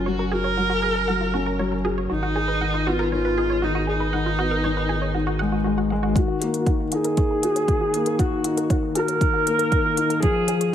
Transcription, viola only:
0.08 F#4
0.33 A#4
2.13 D#4
2.88 F4
3.12 F4
3.64 D#4
3.89 D#4
6.16 F#4
6.92 G#4
8.19 F#4
8.95 A#4
10.23 G#4

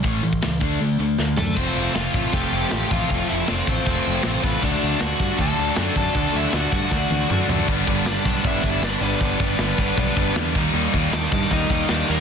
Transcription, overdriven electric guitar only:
1.37 A3 A4
1.56 C4 C5
1.95 F4 F5
2.34 G4 G5
2.91 F4 F5
3.29 E4 E5
3.49 D4 D5
3.68 C4 C5
4.44 B3 B4
4.63 D4 D5
5.02 F#4 F#5
5.41 A4 A5
5.82 G5
5.97 A4 A5
6.36 E4 E5
6.55 F#4 F#5
6.72 F#4 F#5
8.07 D4 D5
8.47 E4 E5
8.84 D4 D5
9.03 B3 B4
11.13 D4 D5
11.53 D#4 D#5
11.90 D4 D5
12.09 A#3 A#4

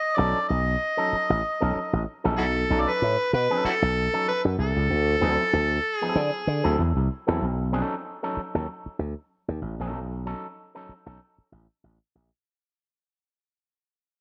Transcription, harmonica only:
Already playing: D#5
0.16 D5
0.48 D#5
2.38 E4 F#4 A4
2.80 D5
2.89 B4
3.33 B4
3.65 E4 F#4 A4
4.28 B4
4.60 A4
5.96 G#4

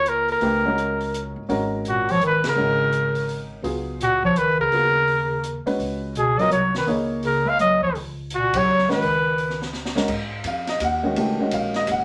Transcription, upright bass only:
Already playing: C#2
0.41 C#2
1.36 G1
1.49 G#1
2.56 G#1
3.62 C#2
4.71 D#2
5.66 D#2
5.78 C#2
6.50 C2
6.86 C#2
7.81 D2
7.94 C#2
8.89 G#2
9.01 C#2
10.08 G#2
10.43 F2
10.80 D#2
11.15 C#2
11.39 muted upright bass stroke
11.51 A#1
11.88 F#1

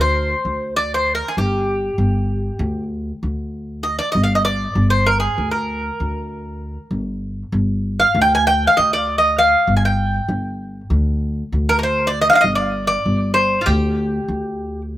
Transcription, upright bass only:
Already playing: D2
0.45 D2
1.37 G1
1.98 G1
2.59 D2
3.23 D2
4.15 G1
4.75 G1
5.38 D2
6.00 D2
6.91 G1
7.52 G1
8.15 D2
8.78 D2
9.67 G1
10.29 G1
10.90 D2
11.52 D2
12.44 G1
13.06 G1
13.67 D2
14.28 D2

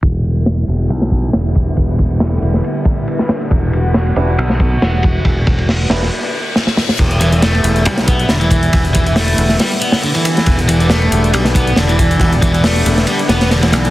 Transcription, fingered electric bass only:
0.03 E1
0.68 E1
0.90 B1
1.34 E1
1.77 E1
2.42 E1
3.51 E1
4.17 E1
4.38 B1
4.82 E1
5.25 E1
5.90 E1
6.99 E1
7.64 E1
7.86 B1
8.30 E1
8.74 E1
9.38 E1
10.47 E1
11.12 E1
11.34 B1
11.77 E1
12.20 E1
12.86 E1
13.29 E1
13.73 B1

